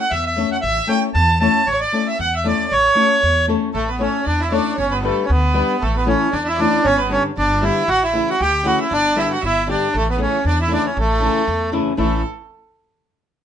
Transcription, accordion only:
0.01 F#5
0.10 E5
0.26 E5
0.52 F#5
0.61 E5
0.88 G5
1.14 A5
1.40 A5
1.66 C#5
1.80 D5
2.07 E5
2.20 F#5
2.36 E5
2.48 D5
2.72 C#5
3.75 A3
3.90 B3
4.01 C#4
4.27 D4
4.40 E4
4.52 D4
4.79 C#4
4.91 B3
5.05 A3
5.24 C#4
5.29 B3
5.81 A3
5.96 B3
6.07 C#4
6.32 D4
6.48 E4
6.59 D4
6.85 C#4
7.00 B3
7.12 C#4
7.38 D4
7.63 E4
7.89 F#4
8.04 E4
8.30 F#4
8.41 G4
8.67 F#4
8.82 E4
8.93 D4
9.18 E4
9.31 F#4
9.45 E4
9.71 D4
9.96 A3
10.09 B3
10.22 C#4
10.46 D4
10.61 E4
10.73 D4
10.86 C#4
10.99 A3
11.98 A3

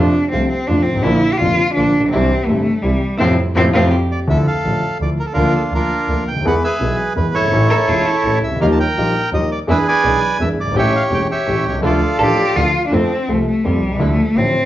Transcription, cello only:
Already playing: D4
0.31 C4
0.49 C4
0.67 D4
0.83 C4
1.03 E4
1.33 G4
1.37 F4
1.74 D4
2.09 C4
2.46 A3
2.82 G3
3.19 C4
3.57 C4
3.75 C4
7.70 A4
7.89 F4
8.07 E4
12.20 G4
12.56 F4
12.87 D4
12.94 C4
13.29 A3
13.47 A3
13.65 G3
14.00 A3
14.38 C4

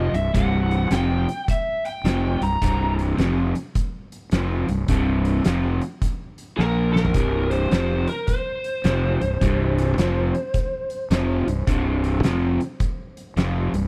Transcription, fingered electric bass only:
Already playing: F1
0.13 C1
0.34 C1
0.91 F1
2.04 F1
2.41 C1
2.62 C1
3.18 F1
4.32 F1
4.69 C1
4.88 C1
5.46 F1
6.58 A#1
7.15 C1
7.72 F1
8.84 F1
9.22 C1
9.41 C1
9.97 F1
11.10 F1
11.47 C1
11.68 C1
12.23 F1
13.36 F1
13.73 C1

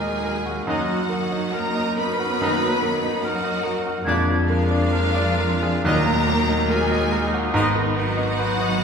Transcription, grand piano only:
Already playing: D#2 A#2 A#3 D#4 F#4 A#4
0.00 D#5
0.24 A#4
0.46 F#4
0.67 F#2
0.88 F#3
1.09 A#3
1.32 D#4
1.53 A#4
1.75 D#5
1.97 A#4
2.19 F#4
2.41 F#2
2.63 F#3
2.82 A#3
3.03 D#4
3.24 A#4
3.44 D#5
3.63 A#4
3.86 F#4
4.07 F2
4.28 F3
4.49 A#3
4.71 D4
4.92 A#4
5.14 D5
5.39 A#4
5.62 G#4
5.85 D#2
6.07 A#2
6.27 A#3
6.49 D#4
6.70 A#4
6.91 D#5
7.12 A#4
7.34 F#4
7.54 G#2
7.76 D#3
7.96 B3
8.17 D#4
8.39 B4
8.61 D#5

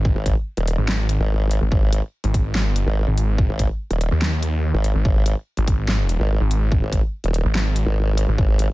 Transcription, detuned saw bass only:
Already playing: G#1
0.78 G#1
1.61 G#1
2.24 G#1
2.67 G1
3.07 G#1
4.11 D#2
4.95 G#1
5.57 G#1
6.41 G#1
7.45 G#1
8.28 G#1

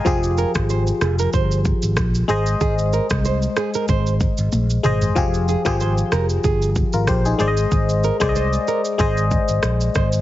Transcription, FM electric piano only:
Already playing: D#5 G#5
0.05 F3 F4 G4 G#4
2.28 G#3 G#4 C5 D#5
4.83 G#3 G#4 C5 D#5
5.15 F3 F4 G4 G#4
5.65 F3 F4 G4 G#4
6.94 F4 A#4
7.08 G4 C5
7.25 D#4 G#4
7.39 G#3 G#4 C5 D5
7.48 D#5
8.20 G#3 G#4 C5 D5
8.29 D#5
8.98 G#3 G#4 C5 D#5

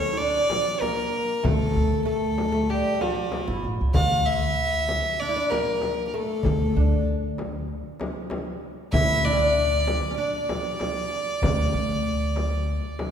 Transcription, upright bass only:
1.45 D2
1.76 D2
3.48 G1
3.64 A1
3.81 C#2
3.96 D2
6.46 D2
6.76 D2
8.94 D2
11.44 D2
11.74 D2

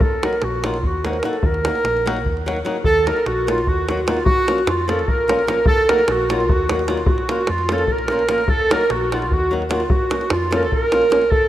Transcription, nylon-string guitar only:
0.23 F#3 A#3 D#4 F#4
0.64 F#3 A#3 D#4 F#4
1.05 F#3 A#3 D#4 F#4
1.23 F#3 A#3 D#4 F#4
1.64 F#3 A#3 D#4 F#4
2.06 F#3 A#3 D#4 F#4
2.46 F#3 A#3 D#4 F#4
2.65 F#3 A#3 D#4 F#4
3.06 F#3 A#3 D#4 F#4
3.47 F#3 A#3 D#4 F#4
3.88 F#3 A#3 D#4 F#4
4.07 F#3 A#3 D#4 F#4
4.47 F3 A#3 C#4 F4
4.88 F3 A#3 C#4 F4
5.28 F3 A#3 C#4 F4
5.47 F3 A#3 C#4 F4
5.89 F#3 A#3 D#4 F#4
6.29 F#3 A#3 D#4 F#4
6.69 F#3 A#3 D#4 F#4
6.88 F#3 A#3 D#4 F#4
7.29 F3 A#3 C#4 F4
7.70 F3 A#3 C#4 F4
8.10 F3 A#3 C#4 F4
8.29 F3 A#3 C#4 F4
8.70 F#3 A#3 D#4 F#4
9.12 F#3 A#3 D#4 F#4
9.51 F#3 A#3 D#4 F#4
9.69 F#3 A#3 D#4 F#4
10.10 F3 A#3 C#4 F4
10.51 F3 A#3 C#4 F4
10.92 F3 A#3 C#4 F4
11.10 F3 A#3 C#4 F4

